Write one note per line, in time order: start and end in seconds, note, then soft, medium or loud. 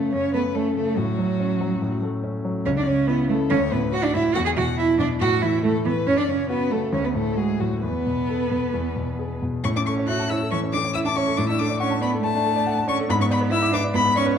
0.00 0.10 F#2 medium
0.00 0.77 C#3 soft
0.00 0.14 A3 medium
0.00 0.56 C#4 medium
0.00 0.12 A4 medium
0.13 0.95 F#2 medium
0.13 0.33 C#4 medium
0.13 0.33 C#5 medium
0.34 0.68 A3 soft
0.34 0.42 B3 medium
0.34 0.56 B4 medium
0.55 0.76 A3 medium
0.55 0.89 C#4 soft
0.55 0.75 A4 medium
0.76 0.98 C#3 soft
0.76 0.98 A3 medium
0.76 0.99 A4 medium
0.97 1.79 A2 medium
0.97 2.02 F#3 medium
0.97 2.02 F#4 medium
1.18 1.52 F#3 soft
1.39 1.73 C#4 medium
1.61 1.94 F#3 medium
1.82 2.63 A2 medium
2.02 2.36 A3 medium
2.23 2.57 C#4 medium
2.45 2.66 F#3 medium
2.66 3.49 C#2 medium
2.66 2.70 C#4 medium
2.66 2.70 C#5 medium
2.78 2.86 D4 medium
2.78 2.89 D5 medium
2.87 3.21 C#3 soft
2.87 3.09 C#4 medium
2.87 3.08 C#5 medium
3.07 3.29 B3 medium
3.07 3.42 E4 medium
3.07 3.16 B4 medium
3.29 3.51 C#3 medium
3.29 3.37 A3 medium
3.29 3.52 A4 medium
3.50 4.33 D2 medium
3.50 3.58 C#4 loud
3.50 3.74 C#5 medium
3.72 4.06 A2 soft
3.72 3.80 B3 medium
3.72 3.94 B4 medium
3.93 4.06 F#4 loud
3.93 4.27 F#4 medium
3.93 4.05 F#5 medium
4.04 4.15 D4 medium
4.04 4.14 D5 medium
4.14 4.36 A2 medium
4.14 4.35 E4 loud
4.14 4.22 E5 medium
4.34 5.19 E2 medium
4.34 4.45 F#4 loud
4.34 4.40 F#5 loud
4.45 4.50 G#4 medium
4.45 4.50 G#5 medium
4.57 4.92 B2 medium
4.57 4.65 F#4 loud
4.57 4.78 F#5 medium
4.77 4.98 E4 loud
4.77 5.13 E4 medium
4.77 4.87 E5 medium
4.99 5.21 B2 medium
4.99 5.07 D4 medium
4.99 5.08 D5 medium
5.20 6.04 A2 medium
5.20 5.44 F#4 loud
5.20 5.29 F#5 loud
5.42 5.77 E3 soft
5.42 5.63 E4 medium
5.42 5.63 E5 medium
5.63 5.71 A3 medium
5.63 5.98 E4 medium
5.63 5.85 A4 medium
5.85 6.07 E3 medium
5.85 5.93 B3 medium
5.85 6.08 B4 medium
6.06 6.90 F#2 medium
6.06 6.18 C#4 loud
6.06 6.19 C#5 medium
6.18 6.28 D4 medium
6.18 6.30 D5 medium
6.28 6.63 C#3 soft
6.28 6.50 C#4 medium
6.28 6.49 C#5 medium
6.49 6.73 B3 medium
6.49 6.84 F#4 medium
6.49 6.73 B4 medium
6.71 6.93 C#3 soft
6.71 6.94 A3 medium
6.71 6.92 A4 medium
6.93 7.80 D2 medium
6.93 7.06 C#4 loud
6.93 6.97 C#5 medium
7.04 7.16 B3 medium
7.04 7.09 B4 medium
7.15 7.50 A2 soft
7.15 7.38 A3 medium
7.15 7.39 A4 medium
7.36 7.59 G#3 medium
7.36 7.74 F#4 soft
7.36 7.61 G#4 medium
7.59 7.83 A2 soft
7.59 7.68 F#3 medium
7.59 7.83 F#4 medium
7.83 8.72 E2 medium
7.83 9.39 B3 medium
7.83 9.39 B4 medium
8.07 8.43 B2 soft
8.29 8.65 A4 soft
8.51 8.74 B2 soft
8.74 9.62 E2 medium
8.96 9.33 B2 soft
9.19 9.55 G#4 soft
9.42 9.65 B2 soft
9.64 10.49 A2 medium
9.64 9.69 C#4 medium
9.64 9.68 C#6 loud
9.75 9.93 C#4 medium
9.75 9.80 D4 medium
9.75 9.80 D6 medium
9.86 10.10 C#4 medium
9.86 10.04 A4 soft
9.86 9.94 C#6 medium
9.97 10.15 C#5 medium
10.08 10.29 F#4 medium
10.08 10.26 E5 medium
10.08 10.31 F#6 medium
10.19 10.37 A5 medium
10.29 10.37 E4 medium
10.29 10.48 C#5 medium
10.29 10.51 E6 medium
10.41 10.58 A4 medium
10.51 10.69 E3 medium
10.51 10.59 C#4 medium
10.51 10.59 C#6 loud
10.63 10.80 C#4 medium
10.73 10.81 D4 medium
10.73 10.91 A4 medium
10.73 10.93 D6 loud
10.85 11.02 C#5 medium
10.94 11.04 E4 medium
10.94 11.12 E5 medium
10.94 10.98 E6 loud
11.04 11.09 D4 medium
11.04 11.23 A5 medium
11.04 11.17 D6 medium
11.15 11.36 C#4 medium
11.15 11.33 C#5 medium
11.15 11.38 C#6 loud
11.27 11.38 A4 medium
11.36 12.21 A2 medium
11.36 11.41 D4 medium
11.36 11.48 D6 loud
11.47 11.66 D4 medium
11.47 11.58 E4 medium
11.47 11.60 E6 medium
11.59 11.67 D4 medium
11.59 11.76 A4 medium
11.59 11.79 D6 loud
11.69 11.87 D5 medium
11.80 12.01 C#4 medium
11.80 11.97 F#5 medium
11.80 12.01 C#6 medium
11.90 12.08 A5 medium
12.02 12.22 B3 medium
12.02 12.19 D5 medium
12.02 12.10 B5 medium
12.13 12.30 A4 medium
12.22 12.86 A3 loud
12.22 12.41 A3 medium
12.22 12.87 A5 loud
12.35 12.52 D4 medium
12.45 12.62 A4 medium
12.56 12.73 D5 medium
12.67 12.84 F#5 medium
12.77 12.95 A5 medium
12.88 13.08 C#4 medium
12.88 13.05 D5 medium
12.88 12.96 C#6 loud
12.99 13.09 A4 medium
13.08 13.92 G#2 medium
13.08 13.13 B3 loud
13.08 13.14 B5 loud
13.19 13.37 B3 medium
13.19 13.29 C#4 medium
13.19 13.25 C#6 medium
13.29 13.52 B3 medium
13.29 13.47 D5 medium
13.29 13.39 B5 loud
13.41 13.58 B4 medium
13.50 13.72 E4 loud
13.50 13.69 E5 medium
13.50 13.73 E6 loud
13.62 13.79 D6 medium
13.72 13.80 D4 medium
13.72 13.90 B4 medium
13.72 13.82 D6 loud
13.84 14.01 D5 medium
13.94 14.38 G#2 medium
13.94 14.02 B3 loud
13.94 14.16 B5 loud
14.05 14.22 B3 medium
14.15 14.38 C#4 loud
14.15 14.33 D5 medium
14.15 14.25 C#6 loud
14.26 14.38 B4 medium